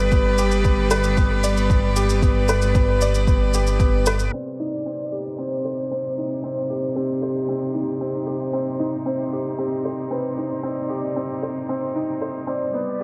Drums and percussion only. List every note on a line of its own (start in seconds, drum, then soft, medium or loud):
0.12 kick loud
0.12 shaker soft
0.38 shaker medium
0.51 shaker soft
0.64 kick medium
0.64 shaker soft
0.91 shaker medium
1.04 shaker soft
1.17 kick medium
1.17 shaker soft
1.44 shaker medium
1.57 shaker soft
1.70 kick loud
1.70 shaker soft
1.96 shaker medium
2.09 shaker soft
2.22 kick loud
2.22 shaker soft
2.48 shaker medium
2.62 shaker soft
2.75 kick loud
2.75 shaker soft
3.01 shaker medium
3.15 shaker soft
3.27 kick loud
3.27 shaker soft
3.54 shaker medium
3.67 shaker soft
3.80 kick medium
3.80 shaker soft
4.06 shaker medium
4.19 shaker soft